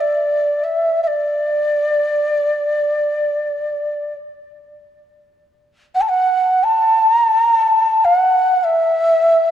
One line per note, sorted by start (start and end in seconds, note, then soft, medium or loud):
0.00 0.65 D5 medium
0.64 1.01 E5 medium
1.03 1.08 E5 medium
1.07 4.13 D5 medium
5.95 6.03 F#5 medium
6.01 6.10 A5 medium
6.09 6.65 F#5 medium
6.64 7.14 A5 medium
7.14 7.28 A#5 medium
7.28 7.42 A5 medium
7.42 7.56 A#5 medium
7.56 8.06 A5 medium
8.05 8.17 F5 medium
8.17 8.66 F#5 medium
8.64 9.51 E5 medium